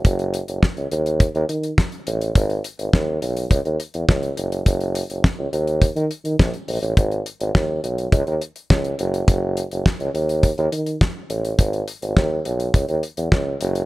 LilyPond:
<<
  \new Staff \with { instrumentName = "Tuba" } { \clef bass \time 4/4 \key gis \minor \tempo 4 = 104 fis,,8. fis,,16 r16 cis,16 dis,8. dis,16 dis8 r8 a,,8 | gis,,8 r16 gis,,16 dis,8 b,,8 cis,16 dis,16 r16 e,16 cis,8 fis,,8 | fis,,8. fis,,16 r16 cis,16 dis,8. dis16 r16 dis16 ais,,16 r16 ais,,16 a,,16 | gis,,8 r16 gis,,16 dis,8 b,,8 cis,16 dis,16 r8 cis,8 fis,,8 |
fis,,8. fis,,16 r16 cis,16 dis,8. dis,16 dis8 r8 a,,8 | gis,,8 r16 gis,,16 dis,8 b,,8 cis,16 dis,16 r16 e,16 cis,8 fis,,8 | }
  \new DrumStaff \with { instrumentName = "Drums" } \drummode { \time 4/4 <hh bd>16 hh16 hh16 hh16 <bd sn>16 hh16 hh16 hh16 <hh bd>16 hh16 hh16 hh16 <bd sn>16 hh16 hh16 hh16 | <hh bd>16 hh16 hh16 hh16 <bd sn>8 hh16 hh16 <hh bd>16 hh16 hh16 hh16 <bd sn>16 hh16 hh16 hh16 | <hh bd>16 hh16 hh16 hh16 <bd sn>8 hh16 hh16 <hh bd>16 hh16 hh16 hh16 <bd sn>16 hh16 hho16 hh16 | <hh bd>16 hh16 hh16 hh16 <bd sn>8 hh16 hh16 <hh bd>16 hh16 hh16 hh16 <bd sn>16 hh16 hh16 hh16 |
<hh bd>8 hh16 hh16 <bd sn>16 hh16 hh16 hh16 <hh bd>16 hh16 hh16 hh16 <bd sn>8 hh16 hh16 | <hh bd>16 hh16 hh16 hh16 <bd sn>8 hh16 hh16 <hh bd>16 hh16 hh16 hh16 <bd sn>8 hh16 hh16 | }
>>